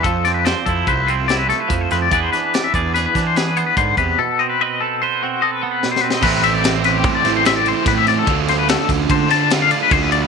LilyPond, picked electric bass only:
\new Staff \with { instrumentName = "Picked electric bass" } { \clef bass \time 5/4 \key a \minor \tempo 4 = 146 f,4. f,8 c,2 f,8 f,8 | e,8 r4 e,4 e4. gis,8 e,8 | r1 r4 | a,,2 a,8 a,,4. a,4 |
d,4. d,8 d2 d,4 | }